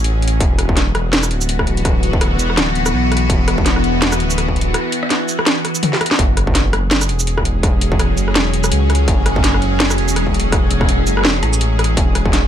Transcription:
Already playing: A1 F#3 C#4 G#4
0.04 closed hi-hat
0.22 closed hi-hat
0.28 closed hi-hat
0.40 E1 E3 B3 F#4, kick, closed hi-hat
0.59 cross-stick, closed hi-hat
0.69 kick
0.77 snare, closed hi-hat
0.95 E1, cross-stick, closed hi-hat
1.13 snare, closed hi-hat
1.23 cross-stick, shaker
1.31 D1, closed hi-hat
1.41 shaker
1.49 closed hi-hat
1.59 kick, cross-stick
1.67 closed hi-hat
1.77 closed hi-hat
1.85 kick, cross-stick, closed hi-hat
2.03 closed hi-hat
2.13 kick
2.21 cross-stick, closed hi-hat
2.39 E1, closed hi-hat, shaker
2.50 cross-stick
2.57 D1, snare, closed hi-hat
2.75 closed hi-hat
2.86 cross-stick, shaker
2.93 B1
3.12 cross-stick, closed hi-hat
3.17 closed hi-hat
3.30 E1, kick, closed hi-hat
3.48 cross-stick, closed hi-hat
3.58 kick
3.66 snare, closed hi-hat
3.76 cross-stick
3.84 E1, closed hi-hat
4.02 snare, closed hi-hat
4.12 cross-stick, shaker
4.20 D1, closed hi-hat
4.30 shaker
4.38 cross-stick, closed hi-hat
4.48 kick
4.56 closed hi-hat
4.61 closed hi-hat
4.74 cross-stick, closed hi-hat
4.92 closed hi-hat
5.03 cross-stick
5.10 snare, closed hi-hat
5.28 shaker
5.39 cross-stick
5.46 snare, closed hi-hat
5.65 cross-stick, closed hi-hat
5.75 shaker
5.83 closed hi-hat, high tom
5.93 snare
6.01 cross-stick, closed hi-hat
6.06 closed hi-hat
6.11 snare
6.19 F#1 F#3 G#3 C#4 G#4, kick, closed hi-hat
6.37 cross-stick, closed hi-hat
6.47 kick
6.55 snare, closed hi-hat
6.73 F#1, cross-stick, closed hi-hat
6.91 snare, closed hi-hat
7.01 cross-stick, shaker
7.09 E1, closed hi-hat
7.20 shaker
7.27 closed hi-hat
7.38 kick, cross-stick
7.45 closed hi-hat
7.63 kick, cross-stick, closed hi-hat
7.81 closed hi-hat
7.92 kick
7.99 cross-stick, closed hi-hat
8.17 F#1, closed hi-hat, shaker
8.28 cross-stick
8.35 E1, snare, closed hi-hat
8.53 closed hi-hat
8.64 cross-stick, shaker
8.72 C#2, closed hi-hat
8.90 cross-stick, closed hi-hat
8.95 closed hi-hat
9.08 F#1, kick, closed hi-hat
9.26 cross-stick, closed hi-hat
9.36 kick
9.44 snare, closed hi-hat
9.54 cross-stick
9.62 F#1, closed hi-hat
9.80 snare, closed hi-hat
9.90 cross-stick, shaker
9.98 E1, closed hi-hat
10.08 shaker
10.16 cross-stick, closed hi-hat
10.27 kick
10.34 closed hi-hat
10.40 closed hi-hat
10.52 kick, cross-stick, closed hi-hat
10.71 closed hi-hat
10.81 kick, cross-stick
10.89 closed hi-hat
11.07 F#1, closed hi-hat, shaker
11.17 cross-stick
11.19 cross-stick
11.21 cross-stick
11.23 E1, cross-stick
11.25 cross-stick, snare
11.27 cross-stick
11.30 cross-stick
11.43 A1, cross-stick, closed hi-hat
11.53 shaker
11.61 closed hi-hat
11.79 cross-stick, closed hi-hat
11.84 closed hi-hat
11.97 E1, kick, closed hi-hat
12.15 cross-stick, closed hi-hat
12.25 kick
12.33 snare, closed hi-hat

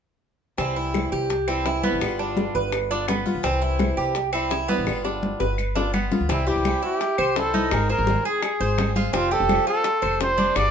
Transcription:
0.57 C2 C3 E3 G3 C4 E4, high bongo, high conga
0.76 E4, high conga
0.94 high bongo, high conga, claves
1.12 C2 G4, high conga
1.30 muted steel-string acoustic guitar stroke, high bongo, high conga
1.48 E3 G3 C4 E4, high conga, claves
1.65 E3 G3 C4 E4, high bongo, low bongo, high conga
1.83 E3 G3 B3 C4 E4, high conga
1.93 A1
2.01 G1 G3 B3 F4, high bongo, high conga, claves
2.19 D4, high bongo, high conga
2.37 high bongo, high conga
2.55 G1 B4, high conga
2.72 muted steel-string acoustic guitar stroke, high bongo, high conga, claves
2.90 B3 D4 F4, high bongo, high conga
3.08 G3 B3 F4, high bongo, low bongo, high conga, claves
3.26 B3 F4, high bongo, high conga
3.35 B1
3.43 C2 C3 E3 G3 C4 E4, high bongo
3.62 E4, high conga
3.79 high bongo, high conga, claves
3.97 C2 G4
4.15 muted steel-string acoustic guitar stroke, high bongo, high conga
4.33 E3 G3 C4 E4, high conga, claves
4.51 E3 G3 C4 E4, high bongo, low bongo, high conga
4.68 E3 G3 B3 C4 E4, high conga
4.78 A1
4.86 G1 G3 B3 F4, high bongo, claves
5.05 D4, high bongo, high conga
5.23 high conga
5.40 G1 B4, high bongo, high conga
5.58 muted steel-string acoustic guitar stroke, high conga, claves
5.76 B3 D4 F4, low bongo, high conga
5.94 G3 B3 F4, high conga, claves
6.12 B3 F4, low bongo, high conga
6.20 D2
6.29 C2 C3 E3 G3 C4 E4, high bongo, high conga
6.47 E3 G3 C4 E4 G4, high conga
6.56 C2
6.65 E3 G3 C4 E4, high bongo, high conga, claves
6.82 E4 G4, high conga
7.00 muted steel-string acoustic guitar stroke, high bongo, high conga
7.18 C2 C5, high conga, claves
7.35 E3 G3 C4 E4 A4, high bongo, low bongo, high conga
7.54 E3 G3 C4 D#4 E4, high conga
7.71 G#1 D#3 G#3 C4 G#4 A#4, high bongo, high conga, claves
7.89 G#3 C4 G#4 A#4 C5, high bongo, high conga
7.99 G#1
8.07 D#3 G#3 C4 G#4, high bongo, high conga
8.25 G#4, high conga
8.43 G#4, muted steel-string acoustic guitar stroke, high bongo, high conga, claves
8.60 G#1 C5, high bongo, high conga
8.78 D#3 G#3 C4 G#4, high bongo, low bongo, high conga, claves
8.96 G#3 C4 F4 G#4, high bongo, high conga
9.13 F1 F3 G3 C4 F4 G4, high bongo
9.31 G3 C4 G4 A4, high conga
9.40 F1
9.49 F3 G3 C4 G4, high bongo, high conga, claves
9.67 F4 A4, high conga
9.84 muted steel-string acoustic guitar stroke, high bongo, high conga
10.02 F1 C5, high conga, claves
10.20 F3 G3 C4 G4 C5, high bongo, low bongo, high conga
10.37 G3 C4 D4 G4, high conga
10.55 G1 B2 D3 G3 B3 G4 D5, high bongo, claves

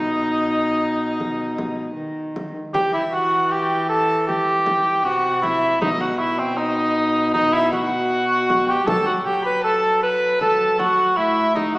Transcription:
Already playing: B2 D#4 D#5
1.20 frame drum
1.58 frame drum
1.96 D#3
2.36 frame drum
2.74 E3 G4 G5, frame drum
2.93 E4 E5
3.12 F#4 F#5
3.51 G4 G5
3.89 A4 A5
4.27 G4 G5, frame drum
4.66 frame drum
5.04 C3 F#4 F#5
5.42 E4 E5, frame drum
5.81 B2 D#4 D#5, frame drum
6.01 F#4 F#5
6.19 E4 E5
6.39 C4 C5
6.57 D#4 D#5
7.34 D#4 D#5, frame drum
7.53 E4 E5
7.73 F#4 F#5, frame drum
8.50 frame drum
8.67 G4 G5
8.87 F#3 A4 A5, frame drum
9.06 F#4 F#5
9.25 G4 G5
9.45 B4 B5
9.64 A4 A5
10.03 B4 B5
10.41 A4 A5, frame drum
10.78 F#4 F#5, frame drum
11.17 A2 E4 E5
11.55 D#4 D#5, frame drum
11.75 F#4 F#5

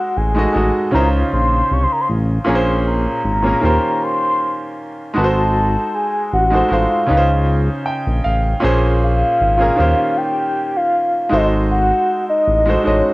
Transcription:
Already playing: G#3 D#4 F#4 A4 C5 F#5
0.17 A1 G#5
0.35 G#3 D#4 F#4 A4
0.39 D#5
0.53 A1 G#3 D#4 F#4 A4
0.57 D#5
0.91 C#2 C#3 C#4 D#4 E4 A#5
0.95 C5
1.01 F4
1.33 A#1 C6
1.71 C2 C#6
1.83 C6
1.92 A#5
2.01 C6
2.09 A1
2.45 A#1 A#2 A#3 C#4 G#4
2.49 A#4
2.55 C5
2.87 A#5
3.24 G#1
3.42 A#2 A#3 C#4 G#4
3.47 A#4
3.60 D#2 D#3 A#3 C#4 F4 G4
3.65 C5
4.03 C6
5.14 G#1 G#3 D#4 F#4 A4 A5
5.18 B4
5.24 C5
5.94 G#5
6.33 A1 F#5
6.50 G#3 D#4 F#4 A4
6.55 C5
6.69 A1 G#3 D#4 F#4 A4 F5
6.73 C5
7.06 C#2 C#3 C#4 D#4 F4
7.11 B4
7.17 C5
7.86 G5
8.07 A#1
8.24 A1 F5
8.60 A#1 A#2 A#3 C#4 G#4
8.64 C5
9.03 F5
9.40 G#1
9.57 A#2 A#3 C#4 G#4
9.62 A#4
9.76 D#2 D#3 A#3 C#4 F4 G4
9.80 C5
10.17 G5
10.76 F5
11.29 G#1 G#3 D#4 F#4 A4 D#5
11.33 C5
11.71 F#5
12.29 D#5
12.47 A1
12.66 G#3 D#4 F#4 A4
12.70 C5
12.83 A1 G#3 D#4 F#4 A4 C#5
12.87 D#5

